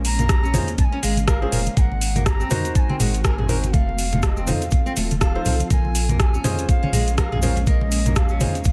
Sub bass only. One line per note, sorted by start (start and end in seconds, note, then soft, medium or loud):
0.00 0.59 A#1 medium
1.03 1.46 G#1 loud
1.52 1.69 F1 medium
1.77 2.44 G#1 loud
3.00 3.75 G#1 medium
3.74 4.53 F1 medium
4.97 5.40 D#1 loud
5.46 5.63 C2 medium
5.71 6.38 A#1 loud
6.94 8.46 A#1 medium